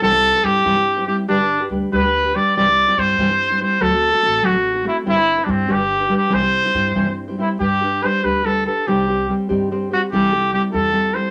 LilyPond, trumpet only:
\new Staff \with { instrumentName = "Trumpet" } { \time 6/8 \key c \major \tempo 4. = 96 a'4 g'4. g'8 | d'8.~ d'32 r8 r32 b'4 d''8 | d''4 c''4. c''8 | a'4. fis'4 e'8 |
e'8.~ e'32 d'32 c'8 g'4 g'8 | c''2 r8 e'8 | \key g \major g'4 c''8 b'8 a'8 a'8 | g'4~ g'32 r4 r16. fis'8 |
g'4 g'8 a'4 c''8 | }